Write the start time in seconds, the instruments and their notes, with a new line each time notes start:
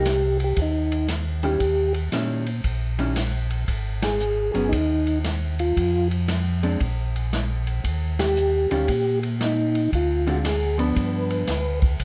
Already playing: tonewheel organ C2 G4
0.05 snare, hi-hat pedal, ride
0.40 ride
0.44 tonewheel organ G4
0.57 tonewheel organ D#2, kick, ride
0.62 tonewheel organ D#4
0.92 ride
1.08 snare, hi-hat pedal, ride
1.43 hollow-body jazz guitar D#3 G3 C#4 E4, tonewheel organ G4, ride
1.60 tonewheel organ D#2, kick, ride
1.94 ride
2.12 tonewheel organ A#2, hollow-body jazz guitar D#3 G3 C#4 E4, snare, hi-hat pedal, ride
2.47 ride
2.64 tonewheel organ A#1, kick, ride
2.99 hollow-body jazz guitar D#3 G3 C#4 E4, ride
3.16 snare, hi-hat pedal, ride
3.50 ride
3.68 tonewheel organ G#1, kick, ride
4.02 tonewheel organ G#4, snare, ride
4.20 hi-hat pedal
4.52 tonewheel organ G1 G#4, hollow-body jazz guitar F#3 B3 C#4, ride
4.69 tonewheel organ D#2 D#4, kick, ride
5.07 ride
5.24 snare, hi-hat pedal, ride
5.59 tonewheel organ F4, ride
5.77 tonewheel organ F2, kick, ride
6.11 ride
6.28 snare, hi-hat pedal, ride
6.63 hollow-body jazz guitar G#3 C4 D4, ride
6.80 tonewheel organ A#1, kick, ride
7.16 ride
7.33 snare, hi-hat pedal, ride
7.67 ride
7.84 tonewheel organ D#2, kick, ride
8.19 tonewheel organ G4, snare, ride
8.37 hi-hat pedal
8.71 tonewheel organ D2 G4, hollow-body jazz guitar D#3 G3 C#4 F4, ride
8.88 tonewheel organ A#2, kick, ride
9.23 ride
9.41 tonewheel organ D#4, snare, hi-hat pedal, ride
9.75 ride
9.93 tonewheel organ D2 F4, kick, ride
10.27 hollow-body jazz guitar D3 G#3 C4 F4, ride
10.31 tonewheel organ F#4
10.45 tonewheel organ G#4, snare, hi-hat pedal, ride
10.78 hollow-body jazz guitar F3 B3 D4, tonewheel organ B4, ride
10.96 tonewheel organ G2, kick, ride
11.30 ride
11.47 tonewheel organ D2, snare, hi-hat pedal, ride
11.82 kick, ride
12.00 tonewheel organ C2, kick, ride